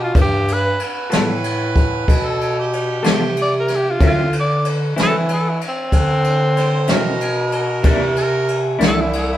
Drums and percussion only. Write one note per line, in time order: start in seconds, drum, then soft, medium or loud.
0.15 kick loud
0.15 ride medium
0.48 ride medium
0.79 ride medium
1.11 snare loud
1.11 ride medium
1.44 ride medium
1.76 kick medium
1.76 ride medium
2.08 kick medium
2.08 ride medium
2.41 ride medium
2.73 ride medium
3.04 snare loud
3.04 ride medium
3.37 ride medium
3.68 snare soft
3.68 ride medium
4.00 kick medium
4.00 ride medium
4.33 ride medium
4.65 ride medium
4.97 snare loud
4.97 ride medium
5.29 ride medium
5.61 ride medium
5.92 kick medium
5.92 ride medium
6.24 ride medium
6.57 snare soft
6.57 ride medium
6.87 snare loud
6.87 ride medium
7.21 ride medium
7.52 ride medium
7.84 kick loud
7.84 ride medium
8.16 ride medium
8.48 ride medium
8.80 snare loud
8.80 ride medium
9.13 ride medium